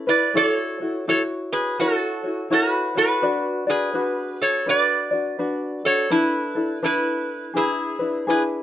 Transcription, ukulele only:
0.07 0.34 E4 soft
0.07 0.34 B4 medium
0.34 0.80 E4 medium
0.34 0.80 F#4 medium
0.34 0.80 A4 medium
0.34 0.79 C#5 medium
0.80 1.06 E4 soft
0.80 1.07 F#4 soft
0.80 1.07 C#5 medium
1.08 1.79 E4 medium
1.08 1.80 F#4 medium
1.08 1.80 C#5 medium
1.79 2.25 E4 medium
1.79 2.24 F#4 medium
1.79 2.24 A4 medium
1.79 2.23 C#5 medium
2.24 2.49 E4 soft
2.24 2.50 F#4 soft
2.24 2.50 C#5 medium
2.50 2.96 E4 medium
2.50 2.95 F#4 medium
2.50 2.96 A4 medium
2.50 2.94 C#5 medium
2.95 3.22 E4 soft
2.95 3.22 F#4 soft
2.95 3.22 C#5 medium
3.22 3.67 D4 medium
3.22 3.66 F#4 medium
3.22 3.68 B4 medium
3.22 3.66 D5 medium
3.67 3.94 D4 soft
3.67 3.93 F#4 soft
3.67 3.93 D5 medium
3.94 4.67 D4 medium
3.94 4.66 F#4 medium
3.94 4.66 B4 medium
4.66 5.12 D4 medium
4.66 5.11 F#4 medium
4.66 5.12 B4 medium
4.66 5.10 D5 medium
5.11 5.38 D4 soft
5.11 5.38 F#4 soft
5.11 5.39 D5 medium
5.39 5.84 D4 medium
5.39 5.84 F#4 medium
5.39 5.84 B4 medium
5.39 5.84 D5 medium
5.85 6.09 D4 soft
5.85 6.11 F#4 medium
6.10 6.56 D4 medium
6.10 6.55 E4 medium
6.10 6.54 A4 medium
6.10 6.55 B4 medium
6.55 6.81 D4 soft
6.55 6.82 E4 soft
6.55 6.82 A4 soft
6.83 7.54 D4 medium
6.83 7.54 E4 medium
6.83 7.53 A4 medium
6.83 7.55 B4 medium
7.54 8.00 D4 medium
7.54 7.99 E4 medium
7.54 7.99 G#4 medium
7.54 7.98 B4 medium
7.99 8.27 D4 soft
7.99 8.27 E4 soft
7.99 8.27 B4 soft
8.27 8.63 D4 medium
8.27 8.63 E4 medium
8.27 8.63 G#4 medium
8.27 8.63 B4 medium

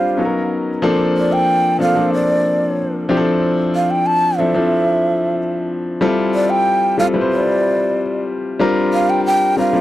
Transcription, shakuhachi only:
0.00 0.51 F5 medium
1.17 1.34 D5 medium
1.33 1.81 G5 loud
1.81 2.11 F5 medium
2.13 3.06 D5 loud
3.75 3.92 F5 medium
3.91 4.08 G5 loud
4.06 4.40 A5 loud
4.38 5.68 E5 loud
6.35 6.51 D5 loud
6.50 6.98 G5 loud
6.99 7.06 F5 loud
7.32 8.25 D5 medium
8.94 9.11 F5 loud
9.10 9.25 G5 medium
9.26 9.56 G5 loud
9.59 9.81 F5 loud

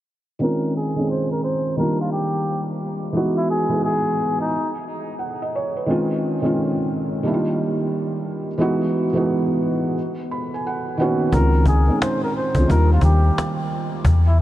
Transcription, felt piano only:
0.39 0.88 D#3 medium
0.39 0.88 G#3 medium
0.39 0.89 C4 medium
0.39 0.89 C#4 medium
0.39 0.90 F4 medium
0.96 1.75 D#3 medium
0.96 1.78 G#3 medium
0.96 1.78 C4 medium
0.96 1.79 C#4 medium
1.00 1.79 G#4 medium
1.76 3.01 D#3 medium
1.76 3.01 G3 medium
1.76 3.02 A#3 medium
1.76 3.02 D4 medium
1.81 3.03 F4 medium
3.12 3.61 E3 medium
3.12 3.61 G#3 medium
3.12 3.62 B3 medium
3.12 3.62 D#4 medium
3.17 3.63 F#4 medium
3.69 4.50 E3 medium
3.69 4.51 G#3 medium
3.69 4.51 B3 medium
3.69 4.51 D#4 medium
3.69 4.52 G#4 medium
5.19 5.39 F#5 medium
5.42 5.53 D#5 medium
5.55 5.75 C#5 medium
5.76 6.08 B4 medium
5.86 6.34 D#3 medium
5.86 6.35 G#3 medium
5.86 6.35 C4 medium
5.86 6.36 C#4 medium
5.90 6.36 F4 loud
6.42 7.22 D#3 medium
6.42 7.24 G#3 medium
6.42 7.24 C4 medium
6.42 7.25 C#4 medium
6.46 7.25 F4 medium
7.23 8.47 D#3 medium
7.23 8.47 G3 medium
7.23 8.48 A#3 medium
7.23 8.48 D4 medium
7.28 7.34 E4 medium
7.34 8.52 F4 medium
8.58 9.06 E3 medium
8.58 9.07 G#3 medium
8.58 9.07 B3 medium
8.58 9.07 D#4 medium
8.58 9.08 F#4 loud
9.13 9.95 E3 medium
9.13 9.95 G#3 medium
9.13 9.96 B3 medium
9.13 9.96 D#4 medium
9.13 9.97 F#4 medium
10.31 10.51 B5 medium
10.54 10.65 G#5 medium
10.66 10.97 F#5 medium
10.97 11.29 D#3 medium
10.97 11.29 A#3 medium
10.97 11.30 B3 medium
10.97 11.30 C#4 medium
10.97 11.31 F#5 medium
11.02 11.31 F#4 loud
11.32 11.80 D#3 medium
11.32 11.80 G#3 medium
11.32 11.81 C4 medium
11.32 11.81 C#4 medium
11.36 11.82 F4 medium
11.87 12.45 D#3 medium
11.87 12.46 G#3 medium
11.87 12.46 C4 medium
11.87 12.46 C#4 medium
11.87 12.47 D#4 medium
12.56 12.67 D#3 medium
12.56 12.69 G#3 medium
12.56 12.69 C4 medium
12.56 12.70 C#4 medium
12.56 12.70 F4 medium
12.68 13.92 D#3 medium
12.68 13.92 G3 medium
12.68 13.93 A#3 medium
12.68 13.93 D4 medium
12.68 13.94 F4 medium

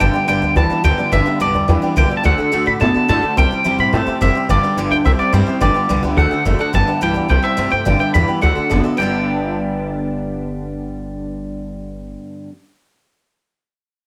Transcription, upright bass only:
0.01 0.11 G1 medium
0.28 0.39 G1 loud
0.42 0.52 D2 medium
0.56 0.66 D2 loud
0.70 muted upright bass stroke medium
0.84 0.95 D2 medium
1.12 1.22 G1 medium
1.41 1.51 C2 medium
1.55 1.65 E2 loud
1.68 1.79 E2 medium
1.97 2.07 C2 medium
2.11 muted upright bass stroke medium
2.25 2.35 D2 medium
2.39 muted upright bass stroke medium
2.53 2.63 D2 medium
2.67 2.77 A2 loud
2.81 2.92 A2 medium
2.96 muted upright bass stroke medium
3.10 3.20 A2 medium
3.23 muted upright bass stroke medium
3.38 3.48 C2 medium
3.65 3.75 E2 medium
3.79 3.89 A2 loud
3.93 4.03 A2 loud
4.07 muted upright bass stroke medium
4.21 4.32 F#1 medium
4.49 4.59 G1 medium
4.77 4.87 G1 loud
4.91 5.01 D2 medium
5.06 5.16 C2 loud
5.19 muted upright bass stroke medium
5.33 5.44 G2 medium
5.48 muted upright bass stroke medium
5.61 5.71 G1 medium
5.90 6.00 C2 medium
6.04 6.14 C#2 medium
6.17 6.27 D2 medium
6.31 muted upright bass stroke medium
6.46 6.56 F#1 medium
6.74 6.84 G1 medium
7.02 7.12 B1 medium
7.16 7.26 D2 medium
7.30 7.40 C2 medium
7.58 7.68 G2 medium
7.73 7.82 G2 medium
7.86 7.96 G1 medium
8.15 8.25 E2 medium
8.43 8.53 D2 medium
8.57 muted upright bass stroke medium
8.71 8.81 F#1 medium
8.99 12.15 G1 medium

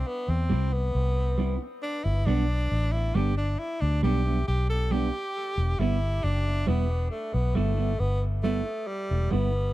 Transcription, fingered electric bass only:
0.28 0.52 E2 medium
0.51 0.91 C2 medium
0.95 1.57 C2 medium
2.06 2.25 G1 medium
2.27 2.67 B1 loud
2.72 3.11 A1 medium
3.15 3.55 G1 medium
3.82 4.01 D2 medium
4.03 4.43 B1 loud
4.48 5.10 B1 medium
5.57 5.77 E1 loud
5.79 6.19 G1 loud
6.24 6.64 F#1 medium
6.68 7.08 E1 medium
7.34 7.54 B1 medium
7.56 7.96 G1 loud
8.00 8.62 G1 medium
9.11 9.30 E1 medium
9.33 9.72 G1 loud

